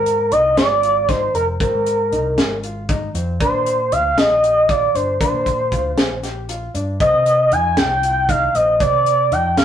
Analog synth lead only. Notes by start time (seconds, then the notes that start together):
Already playing: A#4
0.32 D#5
0.57 D5
1.09 C5
1.35 A#4
1.61 A#4
3.41 C5
3.92 F5
4.18 D#5
4.70 D5
4.95 C5
5.20 C5
7.01 D#5
7.52 G#5
7.78 G5
8.29 F5
8.55 D#5
8.81 D5
9.32 G5
9.58 F5